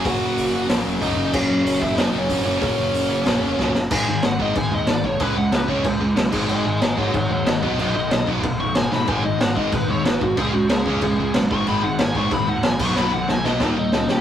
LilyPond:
<<
  \new Staff \with { instrumentName = "Lead electric guitar" } { \time 4/4 \key gis \minor \tempo 4 = 186 <fis' fis''>2 r4 <dis' dis''>8. <dis' dis''>16 | <cis' cis''>4 <cis' cis''>8 <e' e''>8 <dis' dis''>8. <cis' cis''>8. <cis' cis''>8 | <cis' cis''>2.~ <cis' cis''>8 r8 | gis''4 fis''8 dis''8 gis''8 dis''8 d''8 cis''8 |
b'8 fis''8 b'8 cis''8 r2 | <dis'' gis''>8 <dis'' gis''>8 <dis'' gis''>8 <cis'' fis''>8 <cis'' fis''>8 <cis'' fis''>8 <b' dis''>8 <b' dis''>8 | <b' dis''>8 dis''4 r4 cis'''8 gis''8 b''8 | gis''8 dis''8 fis''8 dis''8 b'8 cis''8 b'8 fis'8 |
gis'8 fis'8 gis'2 r8 cis'''8 | b''8 fis''8 gis''8 cis'''8 b''8 fis''8 gis''8 cis'''8 | b''8 fis''8 gis''8 dis''8 r8 <dis' dis''>4 <g' g''>8 | }
  \new Staff \with { instrumentName = "Distorted electric guitar" } { \clef bass \time 4/4 \key gis \minor <fis, cis fis>2 <fis, cis fis>8 <fis, cis fis>4 <fis, cis fis>8~ | <fis, cis fis>2 <fis, cis fis>8 <fis, cis fis>4 <fis, cis fis>8~ | <fis, cis fis>2 <fis, cis fis>8 <fis, cis fis>4 r8 | <gis, dis gis>8 <gis, dis>8 <gis, dis>8 <gis, dis gis>8 <gis, dis>8 <gis, dis>8 <gis, dis>8 <gis, dis>8 |
<cis gis cis'>8 <cis gis>8 <cis gis>8 <cis gis cis'>8 <cis gis>8 <cis gis>8 <cis gis>8 <gis, dis gis>8 | <gis, dis gis>8 <gis, dis>8 <gis, dis>8 <gis, dis gis>8 <gis, dis>8 <gis, dis>8 <gis, dis>8 <b, fis b>8 | <b, fis b>8 <b, fis>8 <b, fis>8 <b, fis b>8 <b, fis>8 <b, fis>8 <b, fis>8 <b, fis>8 | <gis, dis gis>8 <gis, dis>8 <gis, dis>8 <gis, dis gis>8 <gis, dis>8 <gis, dis>8 <gis, dis>8 <gis, dis>8 |
<cis gis cis'>8 <cis gis>8 <cis gis>8 <cis gis cis'>8 <cis gis>8 <cis gis>8 <cis gis>8 <gis, dis gis>8 | <gis, dis gis>8 <gis, dis>8 <gis, dis>8 <gis, dis gis>8 <gis, dis>8 <gis, dis>8 <gis, dis>8 <b, fis b>8 | <b, fis b>8 <b, fis>8 <b, fis>8 <b, fis b>8 <dis ais dis'>8 <dis ais>8 <dis ais>8 <dis ais>8 | }
  \new Staff \with { instrumentName = "Distorted electric guitar" } { \clef bass \time 4/4 \key gis \minor <fis, cis fis ais cis'>2. <fis, cis fis ais cis'>8 <fis, cis fis ais cis'>8~ | <fis, cis fis ais cis'>2. <fis, cis fis ais cis'>8 <fis, cis fis ais cis'>8~ | <fis, cis fis ais cis'>2. <fis, cis fis ais cis'>8 r8 | <gis, dis gis>8 <gis, dis>8 <gis, dis>8 <gis, dis gis>8 <gis, dis>8 <gis, dis>8 <gis, dis>8 <gis, dis>8 |
<cis gis cis'>8 <cis gis>8 <cis gis>8 <cis gis cis'>8 <cis gis>8 <cis gis>8 <cis gis>8 <gis, dis gis>8 | <gis, dis gis>8 <gis, dis>8 <gis, dis>8 <gis, dis gis>8 <gis, dis>8 <gis, dis>8 <gis, dis>8 <b, dis fis>8 | <b, dis fis>8 <b, dis>8 <b, dis>8 <b, dis fis>8 <b, dis>8 <b, dis>8 <b, dis>8 <b, dis>8 | <gis, dis gis>8 <gis, dis>8 <gis, dis>8 <gis, dis gis>8 <gis, dis>8 <gis, dis>8 <gis, dis>8 <gis, dis>8 |
<cis gis cis'>8 <cis gis>8 <cis gis>8 <cis gis cis'>8 <cis gis>8 <cis gis>8 <cis gis>8 <gis, dis gis>8 | <gis, dis gis>8 <gis, dis>8 <gis, dis>8 <gis, dis gis>8 <gis, dis>8 <gis, dis>8 <gis, dis>8 <b, dis fis>8 | <b, dis fis>8 <b, dis>8 <b, dis>8 <b, dis fis>8 <dis g ais>8 <dis g>8 <dis g>8 <dis g>8 | }
  \new Staff \with { instrumentName = "Picked electric bass" } { \clef bass \time 4/4 \key gis \minor fis,,8 fis,,8 fis,,8 fis,,8 ais,,8 e,,8 cis,8 fis,,8 | fis,,8 fis,8 fis,,8 fis,,8 fis,,8 fis,,8 fis,,8 fis,,8 | fis,,8 fis,,8 fis,,8 fis,,8 ais,,8 e,,8 cis,8 fis,,8 | gis,,8 gis,,8 gis,,8 gis,,8 gis,,8 dis,8 gis,,8 b,,8 |
cis,8 cis,8 cis,8 cis,8 cis,8 cis,8 b,,8 gis,,8 | gis,,8 gis,,8 gis,,8 gis,,8 gis,,8 dis,8 gis,,8 b,,8 | b,,8 b,,8 b,,8 b,,8 b,,8 b,,8 gis,,8 gis,8 | gis,,8 gis,,8 gis,,8 gis,,8 gis,,8 dis,8 gis,,8 gis,,8 |
cis,8 cis,8 cis,8 cis,8 cis,8 cis,8 b,,8 gis,,8 | gis,,8 gis,,8 gis,,8 gis,,8 gis,,8 dis,8 ais,,8 b,,8 | b,,8 b,,8 b,,8 b,,8 dis,8 dis,8 cis,8 cis8 | }
  \new DrumStaff \with { instrumentName = "Drums" } \drummode { \time 4/4 <hho bd>4 hho4 <hho sn>4 <hho bd>4 | <cymc bd>4 hho8 bd8 <hho sn>4 <hho bd>4 | <hho bd>4 hho4 <hho sn>4 <bd sn>8 sn8 | <cymc bd>4 <cymc sn>8 bd8 <cymc bd>4 <cymc sn>8 bd8 |
<cymc bd>4 <cymc sn>8 bd8 <cymc bd>4 <cymc sn>8 <cymc bd>8 | cymc4 <cymc sn>8 bd8 <cymc bd>4 <cymc sn>8 bd8 | cymc4 <cymc sn>8 bd8 <cymc bd>4 <cymc sn>8 sn8 | <cymc bd>4 <cymc sn>8 bd8 <cymc bd>4 <cymc sn>8 bd8 |
<cymc bd>4 <cymc sn>8 bd8 <cymc bd>4 <cymc sn>8 bd8 | cymc4 <cymc sn>8 bd8 <cymc bd>4 <cymc sn>8 <cymc bd>8 | sn4 sn8 sn8 <bd sn>4 sn8 sn8 | }
>>